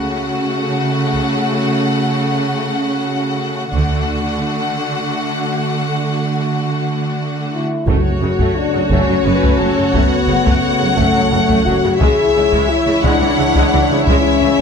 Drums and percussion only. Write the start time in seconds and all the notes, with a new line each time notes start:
1.14 taiko
3.73 taiko
7.87 taiko
8.39 taiko
8.92 taiko
9.43 taiko
9.95 taiko
10.47 taiko
10.98 taiko
11.49 taiko
12.01 taiko
12.53 taiko
13.04 taiko
13.55 taiko
14.07 taiko